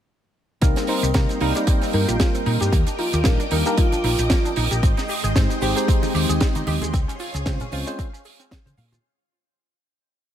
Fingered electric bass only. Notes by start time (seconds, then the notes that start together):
0.62 C2
1.03 C2
1.15 C3
1.41 C2
1.94 G2
2.08 A#1
2.46 A#2
2.61 G2
2.72 D#2
3.13 D#2
3.25 A#1
3.52 D#2
3.92 muted fingered electric bass stroke
4.04 A#1
4.19 A#1
4.57 A#1
4.71 A#1
5.24 G#1
5.36 G#2
5.62 G#1
6.15 D#2
6.29 D#2
6.67 D#2
6.82 D#2
6.94 C#2
7.34 C#2
7.46 C#3
7.72 C#2
8.66 C#3
8.78 A#2